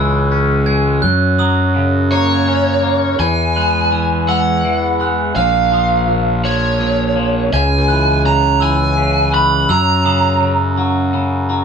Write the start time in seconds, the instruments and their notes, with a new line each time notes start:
Already playing: fingered electric bass C#2, clean electric guitar C#3 E3 G#3 C#4, glockenspiel E6
0.32 clean electric guitar C#4
0.66 clean electric guitar G#3, glockenspiel G#6
1.02 clean electric guitar F#2, fingered electric bass F#2, glockenspiel F#6
1.39 clean electric guitar F#3, glockenspiel D#6
1.76 clean electric guitar C#3
2.12 clean electric guitar A#3, lead electric guitar C#5
2.48 clean electric guitar C#4
2.83 clean electric guitar A#3
3.18 fingered electric bass E2, clean electric guitar E3, lead electric guitar G#5, glockenspiel G#6
3.56 clean electric guitar G#3, glockenspiel F#6
3.92 clean electric guitar E3
4.28 clean electric guitar G#3, lead electric guitar F#5, glockenspiel E6
4.65 clean electric guitar E3
5.00 clean electric guitar G#3, glockenspiel F#6
5.36 fingered electric bass A#1, clean electric guitar A#2, lead electric guitar F5, glockenspiel F6
5.72 clean electric guitar F3, glockenspiel D#6
6.08 clean electric guitar A#2
6.44 clean electric guitar F3, lead electric guitar C#5
6.80 clean electric guitar A#2
7.16 clean electric guitar F3
7.53 fingered electric bass C#2, clean electric guitar C#3, lead electric guitar G#5, glockenspiel G#6
7.88 clean electric guitar E3, glockenspiel F#6
8.25 clean electric guitar C#3, lead electric guitar A#5
8.60 clean electric guitar E3, lead electric guitar G#5, glockenspiel E6
8.97 clean electric guitar C#3
9.32 clean electric guitar E3, lead electric guitar B5, glockenspiel F#6
9.69 fingered electric bass F#2, clean electric guitar F#2, lead electric guitar A#5, glockenspiel E6
10.05 clean electric guitar C#3, glockenspiel D#6
10.41 clean electric guitar C#3
10.78 clean electric guitar F#3
11.14 clean electric guitar C#3
11.50 clean electric guitar F#3